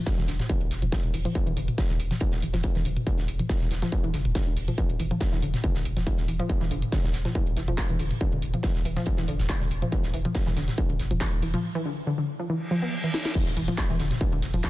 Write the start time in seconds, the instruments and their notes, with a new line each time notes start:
0.06 kick, snare, closed hi-hat
0.18 sub bass E1, synth arpeggio sound E3, snare, closed hi-hat, mid tom
0.28 sub bass E1, synth arpeggio sound D3, snare, closed hi-hat, open hi-hat
0.40 snare, closed hi-hat, mid tom
0.50 synth arpeggio sound D3, kick, closed hi-hat
0.61 sub bass E1, synth arpeggio sound D3, closed hi-hat, mid tom
0.71 sub bass E1, snare, closed hi-hat, open hi-hat
0.82 sub bass E1, synth arpeggio sound F3, closed hi-hat, mid tom
0.92 synth arpeggio sound E3, kick, snare, closed hi-hat
1.04 sub bass E1, closed hi-hat, mid tom
1.14 sub bass E1, synth arpeggio sound E3, open hi-hat
1.25 synth arpeggio sound F3, closed hi-hat, mid tom
1.35 kick, closed hi-hat
1.47 sub bass E1, synth arpeggio sound E3, closed hi-hat, mid tom
1.57 sub bass E1, synth arpeggio sound D3, closed hi-hat, open hi-hat
1.68 closed hi-hat, mid tom
1.78 synth arpeggio sound D3, kick, snare, closed hi-hat
1.89 sub bass E1, synth arpeggio sound D3, snare, closed hi-hat, mid tom
2.00 sub bass E1, closed hi-hat, open hi-hat
2.11 synth arpeggio sound F3, snare, closed hi-hat, mid tom
2.20 synth arpeggio sound E3, kick, closed hi-hat
2.32 sub bass E1, snare, closed hi-hat, mid tom
2.42 sub bass E1, synth arpeggio sound E3, closed hi-hat, open hi-hat
2.53 sub bass E1, synth arpeggio sound F3, snare, open hi-hat, mid tom
2.63 kick, closed hi-hat
2.75 sub bass E1, synth arpeggio sound E3, snare, closed hi-hat, mid tom
2.85 sub bass E1, synth arpeggio sound D3, closed hi-hat, open hi-hat
2.97 closed hi-hat, mid tom
3.07 synth arpeggio sound D3, kick, closed hi-hat
3.18 sub bass E1, synth arpeggio sound D3, snare, closed hi-hat, mid tom
3.28 sub bass E1, closed hi-hat, open hi-hat
3.39 synth arpeggio sound F3, closed hi-hat, mid tom
3.49 synth arpeggio sound E3, kick, snare, closed hi-hat
3.61 sub bass E1, snare, closed hi-hat, mid tom
3.71 sub bass E1, synth arpeggio sound E3, snare, closed hi-hat, open hi-hat
3.82 synth arpeggio sound F3, snare, closed hi-hat, mid tom
3.92 kick, closed hi-hat
4.04 sub bass E1, synth arpeggio sound E3, closed hi-hat, mid tom
4.14 sub bass E1, synth arpeggio sound D3, snare, closed hi-hat, open hi-hat
4.25 sub bass E1, closed hi-hat, mid tom
4.35 synth arpeggio sound D3, kick, snare, closed hi-hat
4.46 sub bass E1, synth arpeggio sound D3, closed hi-hat, mid tom
4.57 sub bass E1, open hi-hat
4.68 synth arpeggio sound F3, closed hi-hat, mid tom
4.78 synth arpeggio sound E3, kick, closed hi-hat
4.89 sub bass E1, closed hi-hat, mid tom
4.99 sub bass E1, synth arpeggio sound E3, closed hi-hat, open hi-hat
5.11 synth arpeggio sound F3, closed hi-hat, mid tom
5.21 kick, snare, closed hi-hat
5.32 sub bass E1, synth arpeggio sound E3, snare, closed hi-hat, mid tom
5.42 sub bass E1, synth arpeggio sound D3, closed hi-hat, open hi-hat
5.54 snare, closed hi-hat, mid tom
5.64 synth arpeggio sound D3, kick, closed hi-hat
5.75 sub bass E1, synth arpeggio sound D3, snare, closed hi-hat, mid tom
5.85 sub bass E1, closed hi-hat, open hi-hat
5.97 sub bass E1, synth arpeggio sound F3, snare, open hi-hat, mid tom
6.07 synth arpeggio sound E3, kick, closed hi-hat
6.18 sub bass E1, snare, closed hi-hat, mid tom
6.28 sub bass E1, synth arpeggio sound E3, closed hi-hat, open hi-hat
6.39 synth arpeggio sound F3, closed hi-hat, mid tom
6.50 kick, closed hi-hat
6.61 sub bass E1, synth arpeggio sound E3, snare, closed hi-hat, mid tom
6.71 sub bass E1, synth arpeggio sound D3, closed hi-hat, open hi-hat
6.82 closed hi-hat, mid tom
6.92 synth arpeggio sound D3, kick, snare, closed hi-hat
7.04 sub bass E1, synth arpeggio sound D3, snare, closed hi-hat, mid tom
7.13 sub bass E1, snare, closed hi-hat, open hi-hat
7.25 synth arpeggio sound F3, snare, closed hi-hat, mid tom
7.35 synth arpeggio sound E3, kick, closed hi-hat
7.47 sub bass E1, closed hi-hat, mid tom
7.56 sub bass E1, synth arpeggio sound E3, snare, closed hi-hat, open hi-hat
7.68 sub bass E1, synth arpeggio sound F3, closed hi-hat, mid tom
7.78 kick, snare, clap, closed hi-hat
7.89 sub bass E1, synth arpeggio sound E3, closed hi-hat, mid tom
7.99 sub bass E1, synth arpeggio sound D3, open hi-hat
8.11 closed hi-hat, mid tom
8.21 synth arpeggio sound D3, kick, closed hi-hat
8.32 sub bass E1, synth arpeggio sound D3, closed hi-hat, mid tom
8.42 sub bass E1, closed hi-hat, open hi-hat
8.54 synth arpeggio sound F3, closed hi-hat, mid tom
8.63 synth arpeggio sound E3, kick, snare, closed hi-hat
8.75 sub bass E1, snare, closed hi-hat, mid tom
8.85 sub bass E1, synth arpeggio sound E3, closed hi-hat, open hi-hat
8.97 synth arpeggio sound F3, snare, closed hi-hat, mid tom
9.06 kick, closed hi-hat
9.17 sub bass E1, synth arpeggio sound E3, snare, closed hi-hat, mid tom
9.27 sub bass E1, synth arpeggio sound D3, closed hi-hat, open hi-hat
9.39 sub bass E1, snare, open hi-hat, mid tom
9.49 synth arpeggio sound D3, kick, clap, closed hi-hat
9.60 sub bass E1, synth arpeggio sound D3, snare, closed hi-hat, mid tom
9.71 sub bass E1, closed hi-hat, open hi-hat
9.82 synth arpeggio sound F3, closed hi-hat, mid tom
9.92 synth arpeggio sound E3, kick, closed hi-hat
10.03 sub bass E1, snare, closed hi-hat, mid tom
10.13 sub bass E1, synth arpeggio sound E3, closed hi-hat, open hi-hat
10.25 synth arpeggio sound F3, closed hi-hat, mid tom
10.35 kick, snare, closed hi-hat
10.46 sub bass E1, synth arpeggio sound E3, snare, closed hi-hat, mid tom
10.56 sub bass E1, synth arpeggio sound D3, snare, closed hi-hat, open hi-hat
10.68 snare, closed hi-hat, mid tom
10.78 synth arpeggio sound D3, kick, closed hi-hat
10.89 sub bass E1, synth arpeggio sound D3, closed hi-hat, mid tom
10.99 sub bass E1, snare, closed hi-hat, open hi-hat
11.11 sub bass E1, synth arpeggio sound F3, closed hi-hat, mid tom
11.20 synth arpeggio sound E3, kick, snare, clap, closed hi-hat
11.32 sub bass E1, closed hi-hat, mid tom
11.42 sub bass E1, synth arpeggio sound E3, open hi-hat
11.54 synth arpeggio sound F3, closed hi-hat, mid tom
11.75 synth arpeggio sound E3
11.85 synth arpeggio sound D3
12.07 synth arpeggio sound D3
12.18 synth arpeggio sound D3
12.39 synth arpeggio sound F3
12.50 synth arpeggio sound E3, reverse cymbal
12.71 synth arpeggio sound F3
12.82 synth arpeggio sound B3
13.04 synth arpeggio sound E3
13.14 synth arpeggio sound E4, snare
13.25 synth arpeggio sound E4, snare
13.35 synth arpeggio sound E3, kick, closed hi-hat, crash, impact
13.46 sub bass E1, snare, closed hi-hat, mid tom
13.57 sub bass E1, synth arpeggio sound E3, closed hi-hat, open hi-hat, ride
13.68 synth arpeggio sound F3, closed hi-hat, mid tom
13.78 kick, snare, clap, closed hi-hat
13.89 sub bass E1, synth arpeggio sound E3, snare, closed hi-hat, mid tom
13.99 sub bass E1, synth arpeggio sound D3, snare, closed hi-hat, open hi-hat, ride
14.11 snare, closed hi-hat, mid tom
14.21 synth arpeggio sound D3, kick, closed hi-hat
14.32 sub bass E1, synth arpeggio sound D3, closed hi-hat, mid tom
14.42 sub bass E1, snare, closed hi-hat, open hi-hat, ride
14.54 sub bass E1, synth arpeggio sound F3, closed hi-hat, mid tom
14.63 synth arpeggio sound E3, kick, snare, clap, closed hi-hat